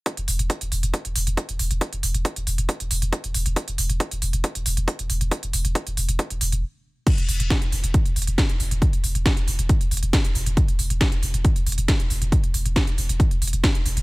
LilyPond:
<<
  \new Staff \with { instrumentName = "Sub bass" } { \clef bass \time 4/4 \key c \lydian \tempo 4 = 137 r16 e,,16 e,,16 e,,16 r16 e,,16 e,,16 e,,16 r16 e,,16 e,,16 e,,16 r16 e,,16 e,,16 e,,16 | r16 e,,16 e,,16 e,,16 r16 e,,16 e,,16 e,,16 r16 e,,16 e,,16 e,,16 r16 e,,16 e,,16 e,,16 | r16 e,,16 e,,16 e,,16 r16 e,,16 e,,16 e,,16 r16 e,,16 e,,16 e,,16 r16 e,,16 e,,16 e,,16 | r16 e,,16 e,,16 e,,16 r16 e,,16 e,,16 e,,16 r16 e,,16 e,,16 e,,16 r4 |
r16 e,,16 e,,16 e,,16 r16 e,,16 e,,16 e,,16 r16 e,,16 e,,16 e,,16 r16 e,,16 e,,16 e,,16 | r16 e,,16 e,,16 e,,16 r16 e,,16 e,,16 e,,16 r16 e,,16 e,,16 e,,16 r16 e,,16 e,,16 e,,16 | r16 e,,16 e,,16 e,,16 r16 e,,16 e,,16 e,,16 r16 e,,16 e,,16 e,,16 r16 e,,16 e,,16 e,,16 | r16 e,,16 e,,16 e,,16 r16 e,,16 e,,16 e,,16 r16 e,,16 e,,16 e,,16 r16 e,,16 e,,16 e,,16 | }
  \new DrumStaff \with { instrumentName = "Drums" } \drummode { \time 4/4 <hh bd>16 hh16 hho16 hh16 <hh bd>16 hh16 hho16 hh16 <hh bd>16 hh16 hho16 hh16 <hh bd>16 hh16 hho16 hh16 | <hh bd>16 hh16 hho16 hh16 <hh bd>16 hh16 hho16 hh16 <hh bd>16 hh16 hho16 hh16 <hh bd>16 hh16 hho16 hh16 | <hh bd>16 hh16 hho16 hh16 <hh bd>16 hh16 hho16 hh16 <hh bd>16 hh16 hho16 hh16 <hh bd>16 hh16 hho16 hh16 | <hh bd>16 hh16 hho16 hh16 <hh bd>16 hh16 hho16 hh16 <hh bd>16 hh16 hho16 hh16 r4 |
<cymc hh bd>16 hh16 hho16 hh16 <hh bd sn>16 hh16 hho16 hh16 <hh bd>16 hh16 hho32 hh32 hh16 <hh bd sn>16 hh16 hho16 hh16 | <hh bd>16 hh16 hho16 hh16 <hh bd sn>16 hh16 hho16 hh16 <hh bd>16 hh16 hho32 hh32 hh16 <hh bd sn>16 hh16 hho16 hh16 | <hh bd>16 hh16 hho16 hh16 <hh bd sn>16 hh16 hho16 hh16 <hh bd>16 hh16 hho32 hh32 hh16 <hh bd sn>16 hh16 hho16 hh16 | <hh bd>16 hh16 hho16 hh16 <hh bd sn>16 hh16 hho16 hh16 <hh bd>16 hh16 hho32 hh32 hh16 <hh bd sn>16 hh16 hho16 hh16 | }
>>